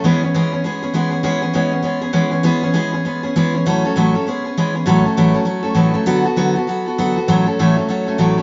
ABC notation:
X:1
M:4/4
L:1/8
Q:"Swing" 1/4=199
K:A
V:1 name="Steel-string acoustic guitar"
[E,G,B,CG] [B,CG] [E,G,B,CG] [B,CG] [G,B,CG] [B,CG] [E,G,B,CG] [B,CG] | [E,G,B,CG] [B,CG] [E,G,B,CG] [B,CG] [G,B,CG] [B,CG] [E,G,B,CG] [B,CG] | [E,G,B,CG] [B,CG] [E,G,B,CG] [B,CG] [G,B,CG] [B,CG] [E,G,B,CG] [B,CG] | [A,,E,F,A,CA] [F,A,CA] [A,,E,F,A,CA] [F,A,CA] [G,B,CG] [B,CG] [E,G,B,CG] [B,CG] |
[A,,E,F,A,CA] [F,A,CA] [A,,E,F,A,CA] [F,A,CA] [F,A,CA] [F,A,CA] [A,,E,F,A,CA] [F,A,CA] | [D,F,B,FA] [B,FA] [D,F,B,FA] [B,FA] [F,B,FA] [B,FA] [D,F,B,FA] [B,FA] | [A,,E,F,A,CA] [F,A,CA] [A,,E,F,A,CA] [F,A,CA] [F,A,CA] [F,A,CA] [A,,E,F,A,CA] [F,A,CA] |]